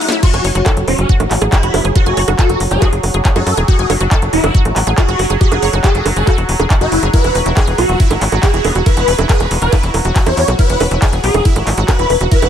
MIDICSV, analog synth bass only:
0, 0, Header, 1, 2, 480
1, 0, Start_track
1, 0, Key_signature, 3, "minor"
1, 0, Tempo, 431655
1, 255, Time_signature, 4, 2, 24, 8
1, 13891, End_track
2, 0, Start_track
2, 0, Title_t, "Analog synth bass"
2, 0, Program_c, 0, 38
2, 374, Note_on_c, 0, 30, 89
2, 453, Note_off_c, 0, 30, 0
2, 495, Note_on_c, 0, 30, 101
2, 573, Note_off_c, 0, 30, 0
2, 614, Note_on_c, 0, 30, 99
2, 693, Note_off_c, 0, 30, 0
2, 854, Note_on_c, 0, 30, 89
2, 933, Note_off_c, 0, 30, 0
2, 974, Note_on_c, 0, 28, 100
2, 1053, Note_off_c, 0, 28, 0
2, 1094, Note_on_c, 0, 30, 89
2, 1173, Note_off_c, 0, 30, 0
2, 1334, Note_on_c, 0, 33, 89
2, 1413, Note_off_c, 0, 33, 0
2, 1454, Note_on_c, 0, 33, 102
2, 1533, Note_off_c, 0, 33, 0
2, 1574, Note_on_c, 0, 33, 97
2, 1652, Note_off_c, 0, 33, 0
2, 1814, Note_on_c, 0, 30, 85
2, 1893, Note_off_c, 0, 30, 0
2, 1934, Note_on_c, 0, 30, 102
2, 2012, Note_off_c, 0, 30, 0
2, 2054, Note_on_c, 0, 30, 93
2, 2132, Note_off_c, 0, 30, 0
2, 2294, Note_on_c, 0, 30, 89
2, 2372, Note_off_c, 0, 30, 0
2, 2414, Note_on_c, 0, 30, 99
2, 2492, Note_off_c, 0, 30, 0
2, 2534, Note_on_c, 0, 30, 97
2, 2613, Note_off_c, 0, 30, 0
2, 2774, Note_on_c, 0, 30, 87
2, 2852, Note_off_c, 0, 30, 0
2, 2894, Note_on_c, 0, 30, 102
2, 2973, Note_off_c, 0, 30, 0
2, 3014, Note_on_c, 0, 30, 91
2, 3093, Note_off_c, 0, 30, 0
2, 3254, Note_on_c, 0, 30, 88
2, 3333, Note_off_c, 0, 30, 0
2, 3374, Note_on_c, 0, 30, 104
2, 3453, Note_off_c, 0, 30, 0
2, 3494, Note_on_c, 0, 30, 92
2, 3573, Note_off_c, 0, 30, 0
2, 3734, Note_on_c, 0, 42, 86
2, 3813, Note_off_c, 0, 42, 0
2, 3854, Note_on_c, 0, 42, 101
2, 3932, Note_off_c, 0, 42, 0
2, 3974, Note_on_c, 0, 28, 93
2, 4052, Note_off_c, 0, 28, 0
2, 4214, Note_on_c, 0, 30, 89
2, 4293, Note_off_c, 0, 30, 0
2, 4334, Note_on_c, 0, 30, 103
2, 4413, Note_off_c, 0, 30, 0
2, 4454, Note_on_c, 0, 30, 97
2, 4533, Note_off_c, 0, 30, 0
2, 4695, Note_on_c, 0, 30, 90
2, 4773, Note_off_c, 0, 30, 0
2, 4815, Note_on_c, 0, 28, 102
2, 4893, Note_off_c, 0, 28, 0
2, 4935, Note_on_c, 0, 30, 89
2, 5013, Note_off_c, 0, 30, 0
2, 5175, Note_on_c, 0, 33, 89
2, 5253, Note_off_c, 0, 33, 0
2, 5294, Note_on_c, 0, 33, 100
2, 5373, Note_off_c, 0, 33, 0
2, 5415, Note_on_c, 0, 33, 94
2, 5493, Note_off_c, 0, 33, 0
2, 5654, Note_on_c, 0, 30, 88
2, 5733, Note_off_c, 0, 30, 0
2, 5774, Note_on_c, 0, 30, 99
2, 5853, Note_off_c, 0, 30, 0
2, 5894, Note_on_c, 0, 30, 92
2, 5973, Note_off_c, 0, 30, 0
2, 6135, Note_on_c, 0, 30, 89
2, 6213, Note_off_c, 0, 30, 0
2, 6254, Note_on_c, 0, 30, 101
2, 6333, Note_off_c, 0, 30, 0
2, 6374, Note_on_c, 0, 30, 97
2, 6452, Note_off_c, 0, 30, 0
2, 6614, Note_on_c, 0, 30, 89
2, 6693, Note_off_c, 0, 30, 0
2, 6734, Note_on_c, 0, 30, 102
2, 6812, Note_off_c, 0, 30, 0
2, 6854, Note_on_c, 0, 30, 91
2, 6933, Note_off_c, 0, 30, 0
2, 7094, Note_on_c, 0, 28, 90
2, 7173, Note_off_c, 0, 28, 0
2, 7214, Note_on_c, 0, 28, 104
2, 7292, Note_off_c, 0, 28, 0
2, 7334, Note_on_c, 0, 28, 92
2, 7412, Note_off_c, 0, 28, 0
2, 7573, Note_on_c, 0, 30, 85
2, 7652, Note_off_c, 0, 30, 0
2, 7694, Note_on_c, 0, 30, 100
2, 7773, Note_off_c, 0, 30, 0
2, 7814, Note_on_c, 0, 30, 94
2, 7892, Note_off_c, 0, 30, 0
2, 8054, Note_on_c, 0, 28, 88
2, 8132, Note_off_c, 0, 28, 0
2, 8173, Note_on_c, 0, 28, 104
2, 8252, Note_off_c, 0, 28, 0
2, 8294, Note_on_c, 0, 28, 96
2, 8372, Note_off_c, 0, 28, 0
2, 8534, Note_on_c, 0, 28, 89
2, 8612, Note_off_c, 0, 28, 0
2, 8654, Note_on_c, 0, 35, 98
2, 8733, Note_off_c, 0, 35, 0
2, 8774, Note_on_c, 0, 28, 89
2, 8853, Note_off_c, 0, 28, 0
2, 9014, Note_on_c, 0, 32, 87
2, 9093, Note_off_c, 0, 32, 0
2, 9134, Note_on_c, 0, 32, 102
2, 9213, Note_off_c, 0, 32, 0
2, 9254, Note_on_c, 0, 32, 92
2, 9333, Note_off_c, 0, 32, 0
2, 9494, Note_on_c, 0, 28, 83
2, 9573, Note_off_c, 0, 28, 0
2, 9614, Note_on_c, 0, 28, 97
2, 9693, Note_off_c, 0, 28, 0
2, 9734, Note_on_c, 0, 28, 92
2, 9813, Note_off_c, 0, 28, 0
2, 9974, Note_on_c, 0, 28, 88
2, 10053, Note_off_c, 0, 28, 0
2, 10094, Note_on_c, 0, 28, 102
2, 10173, Note_off_c, 0, 28, 0
2, 10214, Note_on_c, 0, 28, 97
2, 10293, Note_off_c, 0, 28, 0
2, 10454, Note_on_c, 0, 28, 88
2, 10533, Note_off_c, 0, 28, 0
2, 10574, Note_on_c, 0, 28, 103
2, 10653, Note_off_c, 0, 28, 0
2, 10694, Note_on_c, 0, 28, 92
2, 10773, Note_off_c, 0, 28, 0
2, 10934, Note_on_c, 0, 28, 92
2, 11013, Note_off_c, 0, 28, 0
2, 11054, Note_on_c, 0, 28, 105
2, 11133, Note_off_c, 0, 28, 0
2, 11174, Note_on_c, 0, 28, 93
2, 11253, Note_off_c, 0, 28, 0
2, 11414, Note_on_c, 0, 40, 88
2, 11493, Note_off_c, 0, 40, 0
2, 11534, Note_on_c, 0, 40, 101
2, 11612, Note_off_c, 0, 40, 0
2, 11654, Note_on_c, 0, 35, 92
2, 11733, Note_off_c, 0, 35, 0
2, 11894, Note_on_c, 0, 28, 90
2, 11973, Note_off_c, 0, 28, 0
2, 12014, Note_on_c, 0, 28, 106
2, 12093, Note_off_c, 0, 28, 0
2, 12134, Note_on_c, 0, 28, 97
2, 12212, Note_off_c, 0, 28, 0
2, 12374, Note_on_c, 0, 28, 87
2, 12452, Note_off_c, 0, 28, 0
2, 12494, Note_on_c, 0, 35, 101
2, 12573, Note_off_c, 0, 35, 0
2, 12614, Note_on_c, 0, 28, 90
2, 12693, Note_off_c, 0, 28, 0
2, 12854, Note_on_c, 0, 32, 89
2, 12933, Note_off_c, 0, 32, 0
2, 12974, Note_on_c, 0, 32, 103
2, 13053, Note_off_c, 0, 32, 0
2, 13094, Note_on_c, 0, 32, 96
2, 13173, Note_off_c, 0, 32, 0
2, 13334, Note_on_c, 0, 28, 90
2, 13413, Note_off_c, 0, 28, 0
2, 13454, Note_on_c, 0, 28, 99
2, 13532, Note_off_c, 0, 28, 0
2, 13574, Note_on_c, 0, 28, 92
2, 13652, Note_off_c, 0, 28, 0
2, 13814, Note_on_c, 0, 28, 92
2, 13891, Note_off_c, 0, 28, 0
2, 13891, End_track
0, 0, End_of_file